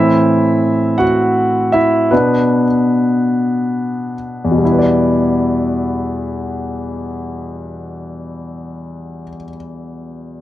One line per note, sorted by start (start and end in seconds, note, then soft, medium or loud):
0.00 0.94 A2 soft
0.00 0.94 E3 soft
0.00 0.95 C4 soft
0.00 0.95 E4 medium
0.00 1.01 E5 medium
0.98 1.70 F#4 medium
0.98 1.75 F#5 medium
1.72 2.09 E4 soft
1.72 2.08 E5 medium
2.11 2.64 B2 soft
2.11 4.13 B3 soft
2.11 2.64 D4 soft
2.11 4.12 B4 soft
4.44 9.22 E2 soft
4.51 9.29 B2 soft
4.58 9.36 G3 soft
4.65 9.43 E4 soft
4.72 9.49 B4 soft
4.79 9.56 D5 soft